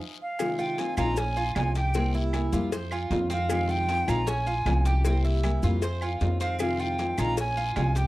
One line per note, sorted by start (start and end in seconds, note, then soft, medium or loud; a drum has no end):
0.22 0.62 F5 loud
0.39 0.77 C3 medium
0.39 0.78 D#3 medium
0.39 0.78 G#3 medium
0.39 0.78 C4 medium
0.39 0.78 F4 medium
0.39 cowbell loud
0.39 low agogo loud
0.39 long guiro medium
0.39 claves medium
0.39 maracas medium
0.59 0.96 F4 medium
0.59 0.81 G5 medium
0.59 maracas soft
0.78 0.97 D#3 medium
0.78 0.97 G#3 medium
0.78 0.98 C4 medium
0.78 0.97 F4 medium
0.78 0.98 G#5 loud
0.78 cowbell medium
0.78 low timbale medium
0.78 low agogo medium
0.78 short guiro medium
0.78 maracas soft
0.97 1.52 A#1 loud
0.97 1.17 D#3 medium
0.97 1.16 G#3 medium
0.97 1.17 C4 medium
0.97 1.16 F4 medium
0.97 1.17 F4 medium
0.97 1.20 A#5 loud
0.97 cowbell medium
0.97 low agogo loud
0.97 short guiro medium
0.97 claves medium
0.97 maracas medium
1.17 1.36 C#4 medium
1.17 1.57 G#5 loud
1.17 muted nylon-string guitar stroke medium
1.17 cowbell loud
1.17 long guiro medium
1.17 maracas medium
1.36 1.74 F4 medium
1.36 low agogo medium
1.36 maracas soft
1.55 2.47 C2 medium
1.55 1.94 F3 medium
1.55 1.94 G#3 medium
1.55 1.95 C#4 medium
1.55 1.95 F4 medium
1.55 1.75 G#5 medium
1.55 cowbell medium
1.55 low timbale medium
1.55 low agogo loud
1.55 short guiro medium
1.55 claves medium
1.55 maracas soft
1.75 1.94 G4 medium
1.75 2.12 G5 loud
1.75 cowbell medium
1.75 short guiro medium
1.75 maracas medium
1.94 2.33 C3 medium
1.94 2.32 G3 medium
1.94 2.32 A#3 medium
1.94 2.14 C4 medium
1.94 2.33 E4 medium
1.94 2.33 G4 medium
1.94 cowbell loud
1.94 low agogo medium
1.94 long guiro medium
1.94 maracas medium
2.14 2.52 E4 medium
2.14 maracas soft
2.33 2.52 G3 medium
2.33 2.52 A#3 medium
2.33 2.52 E4 medium
2.33 2.51 G4 medium
2.33 cowbell medium
2.33 low timbale medium
2.33 low agogo loud
2.33 short guiro medium
2.33 claves medium
2.33 maracas soft
2.53 3.07 F2 loud
2.53 2.72 G3 medium
2.53 2.72 A#3 medium
2.53 2.72 E4 medium
2.53 2.72 F4 medium
2.53 2.71 G4 medium
2.53 low agogo medium
2.53 short guiro medium
2.53 maracas medium
2.72 2.91 C5 medium
2.72 muted nylon-string guitar stroke medium
2.72 cowbell loud
2.72 low agogo medium
2.72 long guiro medium
2.72 maracas medium
2.91 3.29 F4 medium
2.91 low agogo loud
2.91 claves medium
2.91 maracas soft
3.11 4.02 F2 loud
3.11 3.49 D#3 medium
3.11 3.49 G#3 medium
3.11 3.49 C4 medium
3.11 3.50 F4 medium
3.11 cowbell medium
3.11 low timbale medium
3.11 short guiro medium
3.11 maracas soft
3.30 3.68 C4 medium
3.30 3.72 F5 loud
3.30 cowbell medium
3.30 short guiro medium
3.30 maracas medium
3.49 3.88 C3 medium
3.49 3.87 D#3 medium
3.49 3.87 G#3 medium
3.49 3.88 C4 medium
3.49 3.88 F4 medium
3.49 cowbell loud
3.49 low agogo loud
3.49 long guiro medium
3.49 claves medium
3.49 maracas medium
3.69 4.07 F4 medium
3.69 4.11 G5 loud
3.69 maracas soft
3.88 4.07 D#3 medium
3.88 4.07 G#3 medium
3.88 4.07 C4 medium
3.88 4.06 F4 medium
3.88 cowbell medium
3.88 low timbale medium
3.88 low agogo medium
3.88 short guiro medium
3.88 maracas soft
4.07 4.62 A#1 loud
4.07 4.27 D#3 medium
4.07 4.26 G#3 medium
4.07 4.27 C4 medium
4.07 4.26 F4 medium
4.07 4.27 F4 medium
4.07 4.30 A#5 loud
4.07 cowbell medium
4.07 low agogo loud
4.07 short guiro medium
4.07 claves medium
4.07 maracas medium
4.27 4.46 C#4 medium
4.27 4.88 G#5 loud
4.27 muted nylon-string guitar stroke medium
4.27 cowbell loud
4.27 long guiro medium
4.27 maracas medium
4.47 4.84 F4 medium
4.47 low agogo medium
4.47 maracas soft
4.66 5.57 C2 medium
4.66 5.04 F3 medium
4.66 5.04 G#3 medium
4.66 5.05 C#4 medium
4.66 5.05 F4 medium
4.66 cowbell medium
4.66 low timbale medium
4.66 low agogo loud
4.66 short guiro medium
4.66 claves medium
4.66 maracas soft
4.85 5.04 G4 medium
4.85 5.25 G5 medium
4.85 cowbell medium
4.85 short guiro medium
4.85 maracas medium
5.05 5.43 C3 medium
5.05 5.42 G3 medium
5.05 5.43 A#3 medium
5.05 5.24 C4 medium
5.05 5.43 E4 medium
5.05 5.44 G4 medium
5.05 cowbell loud
5.05 low agogo medium
5.05 long guiro medium
5.05 maracas medium
5.25 5.62 E4 medium
5.25 maracas soft
5.43 5.62 G3 medium
5.43 5.63 A#3 medium
5.43 5.63 E4 medium
5.43 5.62 G4 medium
5.43 cowbell medium
5.43 low timbale medium
5.43 low agogo loud
5.43 short guiro medium
5.43 claves medium
5.43 maracas soft
5.63 6.17 F2 loud
5.63 5.82 G3 medium
5.63 5.82 A#3 medium
5.63 5.82 E4 medium
5.63 5.82 F4 medium
5.63 5.82 G4 medium
5.63 low agogo medium
5.63 short guiro medium
5.63 maracas medium
5.82 6.02 C5 medium
5.82 muted nylon-string guitar stroke medium
5.82 cowbell loud
5.82 low agogo medium
5.82 long guiro medium
5.82 maracas medium
6.01 6.40 F4 medium
6.01 low agogo loud
6.01 claves medium
6.01 maracas soft
6.20 7.12 F2 medium
6.20 6.59 D#3 medium
6.20 6.59 G#3 medium
6.20 6.60 C4 medium
6.20 6.60 F4 medium
6.20 cowbell medium
6.20 low timbale medium
6.20 short guiro medium
6.20 maracas soft
6.40 6.78 C4 medium
6.40 6.59 F5 medium
6.40 cowbell medium
6.40 short guiro medium
6.40 maracas medium
6.59 6.98 C3 medium
6.59 6.97 D#3 medium
6.59 6.98 G#3 medium
6.59 6.98 C4 medium
6.59 6.99 F4 medium
6.59 6.82 F5 medium
6.59 cowbell loud
6.59 low agogo loud
6.59 long guiro medium
6.59 claves medium
6.59 maracas medium
6.79 7.17 F4 medium
6.79 7.21 G5 loud
6.79 maracas soft
6.98 7.17 D#3 medium
6.98 7.17 G#3 medium
6.98 7.18 C4 medium
6.98 7.17 F4 medium
6.98 cowbell medium
6.98 low timbale medium
6.98 low agogo medium
6.98 short guiro medium
6.98 maracas soft
7.18 7.72 A#1 medium
7.18 7.37 D#3 medium
7.18 7.37 G#3 medium
7.18 7.37 C4 medium
7.18 7.37 F4 medium
7.18 7.38 A#5 loud
7.18 cowbell medium
7.18 low agogo loud
7.18 short guiro medium
7.18 claves medium
7.18 maracas medium
7.37 7.56 C#4 medium
7.37 7.75 G#5 loud
7.37 muted nylon-string guitar stroke medium
7.37 cowbell loud
7.37 long guiro medium
7.37 maracas medium
7.57 7.95 F4 medium
7.57 low agogo medium
7.57 maracas soft
7.76 8.07 C2 loud
7.76 8.07 F3 medium
7.76 8.07 G#3 medium
7.76 8.07 C#4 medium
7.76 8.07 F4 medium
7.76 7.95 G#5 medium
7.76 cowbell medium
7.76 low timbale medium
7.76 low agogo loud
7.76 short guiro medium
7.76 claves medium
7.76 maracas soft
7.95 8.07 G4 medium
7.95 8.07 G5 medium
7.95 cowbell medium
7.95 short guiro medium
7.95 maracas medium